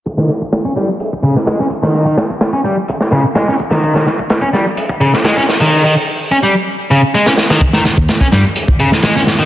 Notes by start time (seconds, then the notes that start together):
0.06 kick, closed hi-hat
0.18 D#3, snare
0.29 snare, closed hi-hat
0.42 kick
0.52 snare, closed hi-hat
0.65 C#4, kick
0.76 G3, snare, closed hi-hat
1.00 closed hi-hat
1.13 kick
1.23 C#3, closed hi-hat
1.36 snare
1.47 G#3, snare, closed hi-hat
1.59 C#4, snare
1.70 kick, closed hi-hat
1.83 D#3, snare
1.94 snare, closed hi-hat
2.06 D#3, kick
2.17 snare, closed hi-hat
2.30 kick
2.41 snare, closed hi-hat
2.53 C#4
2.65 G3, closed hi-hat
2.88 kick, closed hi-hat
3.00 snare
3.11 C#3, snare, closed hi-hat
3.35 G#3, snare, closed hi-hat
3.48 C#4, snare
3.59 kick, closed hi-hat
3.71 D#3, snare
3.83 kick, closed hi-hat
3.94 D#3, snare
4.07 snare, closed hi-hat
4.19 kick
4.30 snare, closed hi-hat
4.42 C#4, kick
4.53 G3, snare, closed hi-hat
4.77 closed hi-hat
4.89 kick
5.01 C#3, closed hi-hat
5.14 snare
5.25 G#3, snare, closed hi-hat
5.37 C#4, snare
5.49 snare, open hi-hat
5.61 D#3
5.84 D#3
6.32 C#4
6.43 G3
6.91 C#3
7.15 G#3
7.26 C#4, snare
7.37 snare
7.50 D#3, snare
7.61 kick, closed hi-hat
7.73 D#3, snare
7.85 snare, closed hi-hat
7.97 D#2, kick
8.08 snare, closed hi-hat
8.21 C#4, kick
8.32 G2 G3, snare, closed hi-hat
8.56 closed hi-hat
8.68 kick
8.80 C#3, closed hi-hat
8.92 snare
9.03 G#3, snare, closed hi-hat
9.16 C#4, snare
9.27 snare, open hi-hat
9.39 D#3